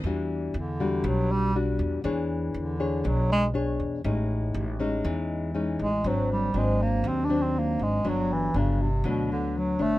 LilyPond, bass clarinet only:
\new Staff \with { instrumentName = "Bass clarinet" } { \clef bass \time 4/4 \key a \dorian \tempo 4 = 120 r4 d4 fis8 g8 r4 | r4 d4 fis8 gis8 r4 | r2. r8 gis8 | fis8 g8 gis8 ais8 \tuplet 3/2 { bis8 d'8 bis8 } ais8 gis8 |
fis8 e8 cis8 c8 b,8 d8 fis8 a8 | }